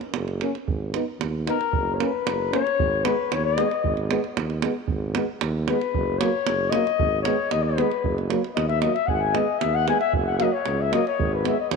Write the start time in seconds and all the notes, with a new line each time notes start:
0.01 davul high
0.14 F#1, davul high
0.28 davul high
0.41 A#3 C#4, davul high
0.55 davul high
0.67 G#1, davul low
0.93 B3 D#4, davul high
1.20 D#2, davul high
1.47 B3 D#4 A#4, davul high
1.61 davul high
1.73 F#1, davul low
1.94 C#5
1.99 A#3 C#4 B4, davul high
2.25 F#1, davul high
2.52 A#3 C#4 C#5, davul high
2.67 davul high
2.78 G#1, davul low
3.04 G#3 B3 B4, davul high
3.31 D#2 C#5, davul high
3.45 D#5
3.57 G#3 B3, davul high
3.71 davul high
3.84 G#1, davul low
3.97 davul high
4.10 G#3 B3, davul high
4.24 davul high
4.36 D#2, davul high
4.50 davul high
4.62 G#3 B3, davul high
4.88 G#1, davul low
5.15 G#3 B3, davul high
5.41 D#2, davul high
5.68 G#3 B3 B4, davul high
5.81 davul high
5.94 F#1, davul low
6.19 F#3 A#3 C#5, davul high
6.47 F#1, davul high
6.70 F#3 A#3 D#5, davul high
6.87 davul high
6.99 G#1, davul low
7.22 G#3 B3 C#5, davul high
7.50 D#2 D#5, davul high
7.63 B4
7.78 G#3 B3, davul high
7.91 davul high
8.04 F#1, davul low
8.18 davul high
8.30 F#3 A#3, davul high
8.44 davul high
8.55 D#2 D#5, davul high
8.68 E5, davul high
8.81 F#3 A#3 D#5, davul high
8.94 E5, davul high
9.07 G#1 F#5 G#5, davul low
9.12 F#5
9.19 G#5
9.33 G#3 B3 D#5, davul high
9.59 D#2 E5, davul high
9.75 F#5
9.87 G#3 B3 G#5, davul high
10.01 E5, davul high
10.13 F#1, davul low
10.27 F#5
10.39 F#3 A#3 D#5, davul high
10.53 C#5
10.66 C#2, davul high
10.81 E5
10.92 F#3 A#3 D#5, davul high
11.07 C#5, davul high
11.19 G#1, davul low
11.34 B4
11.44 G#3 B3 E5, davul high
11.60 D#5
11.71 D#2 C#5, davul high